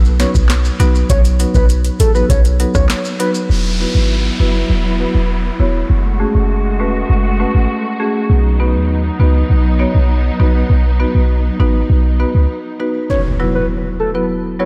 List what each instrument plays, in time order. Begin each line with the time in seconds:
Already playing: 808-style bass B1
0.05 maracas
0.20 marimba F#3 B3 D#4 F#4 B4, soft synth lead C#5, snare, closed hi-hat, maracas
0.35 808-style bass B1, kick, maracas
0.49 snare, clap, closed hi-hat, maracas
0.65 maracas
0.80 808-style bass B1, marimba F#3 B3 D#4 F#4 B4, closed hi-hat, maracas
0.95 maracas
1.10 808-style bass B1, soft synth lead C#5, kick, closed hi-hat, maracas
1.25 closed hi-hat, maracas
1.39 marimba F#3 B3 D#4 F#4 B4, closed hi-hat, maracas
1.54 808-style bass B1, soft synth lead B4, kick, maracas
1.69 closed hi-hat, maracas
1.85 closed hi-hat, maracas
2.00 808-style bass A1, marimba F#4 G#4, soft synth lead A4, closed hi-hat, maracas
2.15 marimba F#3 B3 D#4 F#4 B4, soft synth lead B4, maracas
2.30 808-style bass B1, soft synth lead C#5, kick, closed hi-hat, maracas
2.45 closed hi-hat, maracas
2.60 marimba F#3 B3 D#4 F#4 B4, closed hi-hat, maracas
2.75 808-style bass C#2, soft synth lead C#5, kick, cross-stick, maracas
2.89 snare, clap, closed hi-hat, maracas
3.05 maracas
3.20 marimba F#3 B3 D#4 F#4 B4, soft synth lead B4, closed hi-hat, maracas
3.35 maracas
3.50 808-style bass E1, string section F#3 B3 E4, downlifter
3.80 marimba B3 E4 F#4 B4
3.95 808-style bass G#1
4.40 808-style bass F#1, marimba B3 E4 F#4 B4
4.70 808-style bass E1
5.00 marimba B3 E4 F#4 B4
5.15 808-style bass E1
5.60 808-style bass E1, marimba B3 E4 F#4 C#5
5.90 808-style bass F#1, string section G#3 A3 F#4
6.20 marimba A3 C#4 F#4 G#4
6.35 808-style bass F#1
6.80 808-style bass E1, marimba A3 C#4 F#4 B4
7.10 808-style bass F#1
7.40 marimba A3 C#4 F#4 B4
7.55 808-style bass G#1
8.00 marimba A3 C#4 F#4 G#4
8.30 808-style bass B1, string section F#3 B3 D#4
8.60 marimba B3 D#4 F#4 B4
8.75 808-style bass D#2
9.20 808-style bass C#2, marimba B3 D#4 F#4 B4
9.50 808-style bass B1
9.79 marimba B3 D#4 F#4 C#5
9.95 808-style bass B1
10.40 808-style bass B1, marimba B3 D#4 F#4 B4
10.70 808-style bass B1
11.00 marimba B3 D#4 F#4 B4
11.15 808-style bass B1
11.60 808-style bass A1, marimba B3 D#4 F#4 B4
11.90 808-style bass B1
12.20 marimba B3 D#4 F#4 B4
12.35 808-style bass C#2
12.80 marimba B3 D#4 F#4 B4
13.10 soft synth lead C#5, impact
13.40 marimba F#3 B3 E4 F#4 B4
13.55 soft synth lead B4
14.00 marimba F#4 B4, soft synth lead A4
14.15 marimba F#3 B3 E4 F#4 B4, soft synth lead B4
14.60 marimba F#3 B3 E4 F#4 B4, soft synth lead C#5